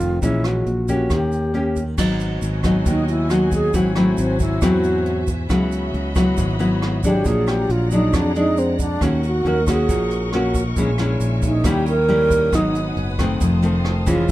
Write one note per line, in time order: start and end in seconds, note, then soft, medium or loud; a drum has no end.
0.00 0.18 F1 medium
0.00 0.20 F2 medium
0.00 0.18 D#3 medium
0.00 0.19 A3 medium
0.00 0.19 C4 medium
0.00 0.22 F4 medium
0.00 kick soft
0.00 closed hi-hat soft
0.00 shaker medium
0.22 0.63 A#1 medium
0.22 1.08 A#2 medium
0.22 0.66 E3 soft
0.22 0.66 G#3 medium
0.22 0.67 C#4 medium
0.22 0.48 E4 medium
0.22 kick medium
0.22 closed hi-hat medium
0.22 shaker medium
0.44 0.89 F#4 medium
0.44 cross-stick medium
0.44 closed hi-hat soft
0.44 shaker soft
0.66 1.07 A#1 medium
0.66 closed hi-hat soft
0.88 1.51 A#3 soft
0.88 1.51 C#4 medium
0.88 1.14 F#4 medium
0.88 1.51 G4 medium
0.88 kick soft
0.88 closed hi-hat soft
0.88 shaker medium
1.10 1.94 D#2 medium
1.10 1.96 D#3 medium
1.10 1.77 G4 medium
1.10 kick medium
1.10 cross-stick medium
1.10 closed hi-hat soft
1.10 shaker medium
1.32 closed hi-hat soft
1.32 shaker soft
1.54 1.82 A#3 soft
1.54 1.83 C#4 medium
1.54 1.83 G4 medium
1.54 closed hi-hat soft
1.76 kick soft
1.76 closed hi-hat soft
1.76 shaker medium
1.96 2.39 G#1 medium
1.96 2.84 G#2 soft
1.96 2.60 F#3 soft
1.96 2.61 B3 medium
1.96 2.61 D#4 medium
1.96 3.71 F#4 medium
1.96 3.71 B4 medium
1.96 3.72 D#5 medium
1.96 5.45 G#5 medium
1.96 kick medium
1.96 cross-stick medium
1.96 crash medium
1.96 shaker medium
2.20 closed hi-hat soft
2.20 shaker soft
2.42 2.83 G#1 medium
2.42 closed hi-hat soft
2.42 shaker medium
2.63 3.26 F#3 medium
2.63 3.27 B3 medium
2.63 3.27 D#4 medium
2.63 kick soft
2.63 cross-stick medium
2.63 closed hi-hat soft
2.63 shaker medium
2.86 3.70 D#2 medium
2.86 3.72 D#3 medium
2.86 3.08 D#4 medium
2.86 kick medium
2.86 closed hi-hat medium
2.86 shaker medium
3.08 3.33 E4 medium
3.08 closed hi-hat soft
3.08 shaker soft
3.30 3.72 F#3 medium
3.30 3.72 B3 medium
3.30 3.73 D#4 medium
3.30 3.53 F#4 medium
3.30 cross-stick medium
3.30 closed hi-hat soft
3.30 shaker soft
3.52 3.77 G#4 loud
3.52 kick soft
3.52 closed hi-hat soft
3.52 shaker medium
3.73 4.15 G#1 medium
3.73 4.59 G#2 medium
3.73 3.92 F#3 medium
3.73 3.92 C4 soft
3.73 3.93 E4 medium
3.73 5.48 F#4 medium
3.73 3.96 F#4 medium
3.73 5.48 C5 medium
3.73 7.22 E5 medium
3.73 kick soft
3.73 closed hi-hat medium
3.73 shaker medium
3.95 4.58 F#3 medium
3.95 4.21 A3 soft
3.95 4.58 C4 medium
3.95 4.58 E4 medium
3.95 cross-stick medium
3.95 closed hi-hat soft
3.95 shaker soft
4.18 4.59 G#1 medium
4.18 4.40 C4 medium
4.18 closed hi-hat soft
4.18 shaker medium
4.39 4.66 E4 medium
4.39 kick medium
4.39 closed hi-hat soft
4.39 shaker medium
4.61 5.46 E2 medium
4.61 5.48 G#2 medium
4.61 5.21 F#3 medium
4.61 5.21 C4 medium
4.61 5.21 E4 medium
4.61 5.29 F#4 medium
4.61 kick medium
4.61 cross-stick medium
4.61 closed hi-hat medium
4.61 shaker medium
4.84 closed hi-hat soft
4.84 shaker soft
5.06 closed hi-hat soft
5.27 kick soft
5.27 closed hi-hat soft
5.27 shaker medium
5.49 5.91 C#2 medium
5.49 6.35 C#3 medium
5.49 6.12 F#3 medium
5.49 6.12 B3 medium
5.49 6.12 E4 medium
5.49 7.24 F#4 medium
5.49 7.23 D#5 medium
5.49 7.24 B5 medium
5.49 kick medium
5.49 cross-stick medium
5.49 closed hi-hat medium
5.49 shaker medium
5.71 closed hi-hat soft
5.71 shaker soft
5.94 6.35 C#2 loud
5.94 closed hi-hat soft
6.15 6.56 F#3 medium
6.15 6.56 B3 medium
6.15 6.56 E4 medium
6.15 kick medium
6.15 cross-stick medium
6.15 closed hi-hat soft
6.15 shaker medium
6.37 7.22 G#1 medium
6.37 7.23 G#2 medium
6.37 kick medium
6.37 closed hi-hat medium
6.37 shaker medium
6.59 7.00 F#3 medium
6.59 7.00 B3 medium
6.59 7.00 E4 medium
6.59 closed hi-hat soft
6.59 shaker soft
6.82 cross-stick medium
6.82 closed hi-hat soft
7.03 7.88 F#3 medium
7.03 7.88 G#3 medium
7.03 7.88 D4 medium
7.03 7.28 G4 medium
7.03 kick soft
7.03 closed hi-hat soft
7.03 shaker medium
7.25 7.66 A#1 medium
7.25 8.11 A#2 medium
7.25 8.99 G#4 medium
7.25 7.49 G#4 medium
7.25 8.99 D5 medium
7.25 10.73 F#5 medium
7.25 8.99 A#5 medium
7.25 kick medium
7.25 closed hi-hat medium
7.25 shaker medium
7.47 7.73 G4 medium
7.47 cross-stick medium
7.47 closed hi-hat soft
7.47 shaker soft
7.69 8.10 A#1 loud
7.69 7.92 F4 medium
7.69 closed hi-hat soft
7.91 8.32 F#3 medium
7.91 8.32 G#3 medium
7.91 8.32 D4 medium
7.91 8.17 D#4 medium
7.91 closed hi-hat soft
7.91 shaker medium
8.13 8.97 F2 medium
8.13 8.36 D4 medium
8.13 kick medium
8.13 cross-stick medium
8.13 closed hi-hat medium
8.13 shaker medium
8.35 8.98 G#3 medium
8.35 8.98 D4 medium
8.35 8.60 D#4 medium
8.35 closed hi-hat soft
8.35 shaker soft
8.57 8.79 C4 medium
8.57 closed hi-hat soft
8.57 shaker soft
8.79 9.04 D4 loud
8.79 kick soft
8.79 closed hi-hat soft
8.79 shaker medium
9.01 9.42 D#2 medium
9.01 9.87 D#3 medium
9.01 9.30 A#3 soft
9.01 9.24 C#4 medium
9.01 9.30 C#4 soft
9.01 9.30 F#4 medium
9.01 11.62 A#4 medium
9.01 10.75 D#5 medium
9.01 11.62 C#6 medium
9.01 kick medium
9.01 cross-stick medium
9.01 closed hi-hat medium
9.01 shaker medium
9.23 9.49 F#4 medium
9.23 closed hi-hat soft
9.23 shaker soft
9.45 9.86 D#2 medium
9.45 9.58 A#3 medium
9.45 9.58 C#4 soft
9.45 9.59 F#4 medium
9.45 9.68 A#4 medium
9.45 closed hi-hat soft
9.67 10.30 A#3 medium
9.67 10.30 C#4 medium
9.67 10.30 F#4 medium
9.67 10.30 G#4 medium
9.67 kick medium
9.67 cross-stick medium
9.67 closed hi-hat soft
9.67 shaker medium
9.89 10.73 A#1 medium
9.89 10.75 A#2 medium
9.89 kick medium
9.89 closed hi-hat medium
9.89 shaker medium
10.11 closed hi-hat soft
10.11 shaker soft
10.32 10.62 A#3 medium
10.32 10.62 C#4 medium
10.32 10.62 F#4 medium
10.32 cross-stick medium
10.32 closed hi-hat soft
10.55 kick soft
10.55 closed hi-hat soft
10.55 shaker medium
10.76 11.18 A#1 medium
10.76 11.63 A#2 medium
10.76 10.90 G#3 medium
10.76 10.90 C#4 medium
10.76 10.90 E4 medium
10.76 12.51 E5 medium
10.76 11.64 G#5 medium
10.76 kick medium
10.76 closed hi-hat medium
10.76 shaker medium
10.98 11.61 G#3 medium
10.98 11.62 C#4 medium
10.98 11.62 E4 medium
10.98 cross-stick medium
10.98 closed hi-hat soft
10.98 shaker soft
11.20 11.61 A#1 medium
11.20 closed hi-hat soft
11.20 shaker medium
11.42 11.69 D#4 medium
11.42 kick medium
11.42 closed hi-hat soft
11.42 shaker medium
11.63 12.49 D#2 loud
11.63 12.51 D#3 medium
11.63 11.93 G3 medium
11.63 11.93 C#4 medium
11.63 11.94 E4 medium
11.63 11.88 G4 medium
11.63 12.51 C#5 medium
11.63 12.51 G5 medium
11.63 14.26 D#6 medium
11.63 kick medium
11.63 cross-stick medium
11.63 closed hi-hat medium
11.63 shaker medium
11.86 12.56 A#4 loud
11.86 closed hi-hat soft
11.86 shaker soft
12.08 12.49 G3 medium
12.08 12.49 C#4 medium
12.08 12.49 E4 medium
12.08 closed hi-hat soft
12.30 kick medium
12.30 closed hi-hat soft
12.30 shaker medium
12.51 12.94 G#1 medium
12.51 13.38 G#2 medium
12.51 13.15 F#3 soft
12.51 13.15 B3 medium
12.51 13.15 D#4 medium
12.51 12.98 D#4 medium
12.51 13.39 B4 medium
12.51 13.39 F#5 medium
12.51 13.39 G#5 medium
12.51 kick medium
12.51 cross-stick medium
12.51 closed hi-hat soft
12.51 shaker medium
12.75 closed hi-hat soft
12.75 shaker soft
12.97 13.38 F#1 medium
12.97 closed hi-hat soft
13.19 13.59 D#3 medium
13.19 13.59 A3 medium
13.19 13.60 C4 medium
13.19 kick medium
13.19 cross-stick medium
13.19 closed hi-hat soft
13.19 shaker medium
13.40 14.25 F1 medium
13.40 14.26 F2 medium
13.40 14.28 C5 medium
13.40 14.28 F5 medium
13.40 14.27 A5 medium
13.40 kick medium
13.40 closed hi-hat medium
13.40 shaker medium
13.62 14.03 D#3 medium
13.62 14.03 A3 medium
13.62 14.04 C4 medium
13.62 closed hi-hat soft
13.62 shaker soft
13.85 cross-stick medium
13.85 closed hi-hat soft
14.06 14.31 E3 medium
14.06 14.31 G#3 medium
14.06 14.31 C#4 medium
14.06 14.31 F4 medium
14.06 kick soft
14.06 closed hi-hat soft
14.06 shaker medium
14.28 14.31 G#5 medium
14.28 14.31 C#6 medium